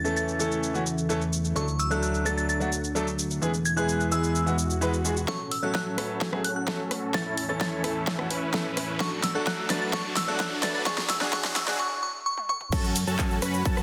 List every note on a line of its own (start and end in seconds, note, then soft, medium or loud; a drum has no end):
0.00 1.54 E2 medium
0.00 1.52 C#3 medium
0.00 1.54 E3 medium
0.00 3.38 A3 medium
0.00 1.54 E4 medium
0.04 0.37 E3 medium
0.04 0.37 A3 medium
0.04 0.37 C#4 medium
0.04 0.37 A4 loud
0.04 0.12 A6 medium
0.04 shaker soft
0.17 0.24 A6 medium
0.17 shaker soft
0.28 shaker soft
0.39 0.72 E3 medium
0.39 0.72 A3 medium
0.39 0.72 C#4 medium
0.39 0.72 A4 loud
0.39 shaker medium
0.52 shaker soft
0.63 shaker soft
0.74 0.81 E3 medium
0.74 0.81 A3 medium
0.74 0.81 C#4 medium
0.74 0.82 F#4 medium
0.74 shaker soft
0.86 shaker medium
0.98 shaker soft
1.09 1.20 E3 medium
1.09 1.20 A3 medium
1.09 1.20 C#4 medium
1.09 1.21 A4 loud
1.09 shaker soft
1.21 shaker soft
1.33 shaker medium
1.45 shaker soft
1.56 3.40 D2 medium
1.56 3.40 D3 medium
1.56 1.62 F#3 medium
1.56 3.40 F#3 medium
1.56 1.63 A3 medium
1.56 1.63 D4 medium
1.56 3.40 F#4 medium
1.56 1.63 A4 medium
1.56 1.75 C#6 medium
1.56 shaker soft
1.68 shaker soft
1.79 1.89 E6 medium
1.79 shaker medium
1.90 2.23 F#3 medium
1.90 2.23 A3 medium
1.90 2.23 D4 medium
1.90 2.23 A4 loud
1.90 1.98 F#6 medium
1.90 shaker soft
2.03 2.10 F#6 medium
2.03 shaker soft
2.14 shaker soft
2.25 2.58 F#3 medium
2.25 2.58 A3 medium
2.25 2.58 D4 medium
2.25 2.58 A4 loud
2.25 2.35 A6 medium
2.25 shaker medium
2.38 2.45 A6 medium
2.38 shaker soft
2.49 2.57 A6 medium
2.49 shaker soft
2.60 2.67 F#3 medium
2.60 2.67 A3 medium
2.60 2.67 D4 medium
2.60 2.68 F#4 medium
2.60 shaker soft
2.73 shaker medium
2.84 shaker soft
2.95 3.06 F#3 medium
2.95 3.06 A3 medium
2.95 3.06 D4 medium
2.95 3.07 A4 loud
2.95 shaker soft
3.07 shaker soft
3.19 shaker medium
3.31 shaker soft
3.42 5.26 E2 medium
3.42 5.26 B2 medium
3.42 3.48 E3 medium
3.42 5.26 E3 medium
3.42 3.49 G#3 medium
3.42 5.26 G#3 medium
3.42 3.49 B3 medium
3.42 5.26 E4 medium
3.42 3.49 G#4 loud
3.42 shaker soft
3.54 shaker soft
3.65 3.75 G#6 medium
3.65 shaker medium
3.76 4.09 E3 medium
3.76 4.09 G#3 medium
3.76 4.09 B3 medium
3.76 4.09 G#4 loud
3.76 4.10 F#6 medium
3.76 shaker soft
3.89 shaker soft
4.00 shaker soft
4.11 4.44 E3 medium
4.11 4.44 G#3 medium
4.11 4.44 B3 medium
4.11 4.44 G#4 medium
4.11 4.58 E6 medium
4.11 shaker medium
4.24 shaker soft
4.35 swell medium
4.35 shaker soft
4.46 4.53 E3 medium
4.46 4.53 G#3 medium
4.46 4.54 B3 medium
4.46 4.54 F#4 medium
4.46 shaker soft
4.59 shaker medium
4.70 shaker soft
4.81 4.92 E3 medium
4.81 4.92 G#3 medium
4.81 4.92 B3 medium
4.81 4.93 B4 loud
4.81 shaker soft
4.93 shaker soft
5.04 5.11 E3 medium
5.04 5.11 G#3 medium
5.04 5.12 B3 medium
5.04 5.12 G#4 medium
5.04 shaker medium
5.17 shaker soft
5.28 8.97 A2 medium
5.28 5.35 F#3 medium
5.28 7.12 F#3 medium
5.28 5.35 A3 medium
5.28 8.97 C#4 medium
5.28 5.45 C#4 medium
5.28 5.35 C#4 medium
5.28 5.45 F#4 medium
5.28 10.82 A4 medium
5.28 5.45 A4 medium
5.28 5.35 A4 medium
5.28 5.47 C#6 medium
5.28 kick loud
5.28 snare soft
5.28 riser medium
5.51 5.61 E6 medium
5.51 open hi-hat loud
5.62 5.95 F#3 medium
5.62 5.95 A3 medium
5.62 5.90 C#4 medium
5.62 5.95 C#4 medium
5.62 5.90 F#4 medium
5.62 5.90 A4 loud
5.62 5.95 A4 loud
5.62 5.71 F#6 medium
5.75 5.82 F#6 medium
5.75 kick loud
5.75 snare soft
5.97 6.30 F#3 medium
5.97 6.30 A3 medium
5.97 6.18 C#4 medium
5.97 6.30 C#4 medium
5.97 6.18 F#4 medium
5.97 6.30 A4 loud
5.97 6.18 B4 medium
5.97 cross-stick medium
5.97 open hi-hat loud
6.21 7.13 A4 medium
6.21 kick loud
6.21 snare soft
6.32 6.39 F#3 medium
6.32 6.39 A3 medium
6.32 6.40 C#4 medium
6.32 6.40 G#4 loud
6.32 cross-stick medium
6.44 6.52 F#6 medium
6.44 open hi-hat loud
6.56 6.64 F#6 medium
6.67 6.78 F#3 loud
6.67 6.78 A3 medium
6.67 6.78 C#4 medium
6.67 6.79 A4 loud
6.67 kick loud
6.67 snare medium
6.91 cross-stick medium
6.91 open hi-hat loud
7.14 8.98 E2 medium
7.14 7.21 E3 medium
7.14 8.98 E3 medium
7.14 7.21 A3 medium
7.14 7.21 C#4 medium
7.14 7.21 A4 loud
7.14 7.35 A6 medium
7.14 kick loud
7.14 snare medium
7.26 7.43 C#4 loud
7.26 7.43 E4 medium
7.26 7.43 A4 loud
7.37 7.47 A6 medium
7.37 open hi-hat loud
7.49 7.81 E3 medium
7.49 7.81 A3 medium
7.49 7.81 C#4 medium
7.49 7.81 E4 medium
7.49 7.82 A4 loud
7.49 7.81 C#5 loud
7.49 7.57 A6 medium
7.61 7.68 A6 medium
7.61 kick loud
7.61 snare medium
7.83 8.16 E3 medium
7.83 8.16 A3 medium
7.83 8.04 C#4 medium
7.83 8.16 C#4 medium
7.83 8.04 E4 medium
7.83 8.04 A4 loud
7.83 8.16 A4 loud
7.83 cross-stick medium
7.83 open hi-hat loud
8.07 8.24 C#4 medium
8.07 8.24 E4 medium
8.07 8.24 A4 medium
8.07 kick loud
8.07 snare medium
8.18 8.25 E3 medium
8.18 8.25 A3 medium
8.18 8.26 C#4 medium
8.18 8.26 F#4 loud
8.18 cross-stick medium
8.31 8.98 C#4 medium
8.31 8.98 E4 medium
8.31 8.98 B4 medium
8.31 open hi-hat loud
8.53 8.64 E3 loud
8.53 8.64 A3 medium
8.53 8.64 C#4 medium
8.53 8.65 A4 loud
8.53 kick loud
8.53 snare medium
8.77 cross-stick medium
8.77 open hi-hat loud
9.00 10.85 A2 medium
9.00 9.07 F#3 medium
9.00 10.85 F#3 medium
9.00 9.07 A3 medium
9.00 10.84 D4 medium
9.00 9.17 D4 medium
9.00 9.07 D4 medium
9.00 9.17 F#4 medium
9.00 9.07 A4 medium
9.00 9.19 C#6 medium
9.00 kick loud
9.00 snare medium
9.24 9.33 E6 medium
9.24 snare medium
9.24 open hi-hat loud
9.35 9.67 F#3 medium
9.35 9.67 A3 medium
9.35 9.62 D4 medium
9.35 9.67 D4 medium
9.35 9.62 F#4 medium
9.35 9.62 A4 loud
9.35 9.68 A4 loud
9.35 9.43 F#6 medium
9.47 9.54 F#6 medium
9.47 kick loud
9.47 snare medium
9.70 9.91 F#3 medium
9.70 9.91 A3 medium
9.70 9.91 D4 medium
9.70 9.92 D4 medium
9.70 9.91 F#4 medium
9.70 9.92 A4 medium
9.70 9.91 B4 medium
9.70 9.79 A6 medium
9.70 snare medium
9.70 open hi-hat loud
9.82 9.89 A6 medium
9.93 10.00 F#3 medium
9.93 10.00 A3 medium
9.93 10.10 D4 medium
9.93 10.00 D4 medium
9.93 10.10 A4 medium
9.93 10.00 A4 loud
9.93 10.12 C#6 medium
9.93 kick loud
9.93 snare medium
10.17 10.26 E6 medium
10.17 snare medium
10.17 open hi-hat loud
10.28 10.60 F#3 medium
10.28 10.60 A3 medium
10.28 10.55 D4 loud
10.28 10.60 D4 medium
10.28 10.55 F#4 medium
10.28 10.55 A4 loud
10.28 10.61 A4 loud
10.28 10.36 F#6 medium
10.40 10.47 F#6 medium
10.40 kick loud
10.40 snare medium
10.62 10.84 F#3 medium
10.62 10.84 A3 medium
10.62 10.84 D4 medium
10.62 10.85 D4 medium
10.62 10.84 F#4 medium
10.62 10.85 A4 loud
10.62 10.84 B4 medium
10.62 10.72 A6 medium
10.62 snare medium
10.62 open hi-hat loud
10.75 10.82 A6 medium
10.86 11.78 B2 medium
10.86 10.93 F#3 medium
10.86 10.93 G#3 medium
10.86 11.78 G#3 medium
10.86 11.03 D4 medium
10.86 10.93 D4 medium
10.86 11.78 E4 medium
10.86 11.03 F#4 medium
10.86 11.03 G#4 medium
10.86 11.78 G#4 medium
10.86 10.93 G#4 loud
10.86 11.05 C#6 medium
10.86 kick loud
10.86 snare medium
10.98 snare medium
11.10 11.19 E6 medium
11.10 snare medium
11.10 open hi-hat loud
11.21 11.31 F#3 medium
11.21 11.31 G#3 medium
11.21 11.31 D4 loud
11.21 11.31 D4 medium
11.21 11.31 F#4 medium
11.21 11.31 G#4 loud
11.21 11.29 F#6 medium
11.21 snare medium
11.32 11.39 F#3 medium
11.32 11.39 G#3 medium
11.32 11.50 D4 medium
11.32 11.40 D4 medium
11.32 11.50 F#4 medium
11.32 11.50 G#4 medium
11.32 11.51 C#6 loud
11.32 kick loud
11.32 snare medium
11.44 snare medium
11.56 11.65 E6 medium
11.56 snare loud
11.56 open hi-hat loud
11.67 11.77 F#3 loud
11.67 11.77 G#3 medium
11.67 11.78 D4 loud
11.67 11.78 D4 medium
11.67 11.77 F#4 medium
11.67 11.78 G#4 loud
11.67 11.75 F#6 medium
11.67 snare medium
11.79 11.98 C#6 medium
12.03 12.21 C#6 medium
12.26 12.45 C#6 loud
12.38 high tom medium
12.49 12.68 C#6 loud
12.49 mid tom medium
12.61 mid tom medium
12.72 13.05 F#2 loud
12.72 13.83 C#3 medium
12.72 13.83 F#3 medium
12.72 13.83 A3 medium
12.72 12.89 C#4 medium
12.72 12.89 F#4 medium
12.72 13.83 F#4 medium
12.72 12.89 A4 medium
12.72 12.89 A5 medium
12.72 kick loud
12.72 crash loud
12.72 shaker soft
12.84 shaker soft
12.96 open hi-hat loud
12.96 shaker medium
13.07 13.40 F#2 loud
13.07 13.34 C#4 loud
13.07 13.34 F#4 medium
13.07 13.34 A4 loud
13.07 13.34 A5 loud
13.07 shaker soft
13.19 kick loud
13.19 clap loud
13.19 shaker soft
13.31 shaker soft
13.42 13.63 F#2 loud
13.42 13.63 C#4 medium
13.42 13.63 F#4 medium
13.42 13.63 B4 medium
13.42 13.63 B5 medium
13.42 cross-stick medium
13.42 open hi-hat loud
13.42 shaker medium
13.54 shaker soft
13.65 13.83 F#2 loud
13.65 13.83 C#4 medium
13.65 13.83 F#4 medium
13.65 13.83 A4 medium
13.65 13.83 A5 loud
13.65 kick loud
13.65 shaker soft
13.77 cross-stick medium
13.77 shaker soft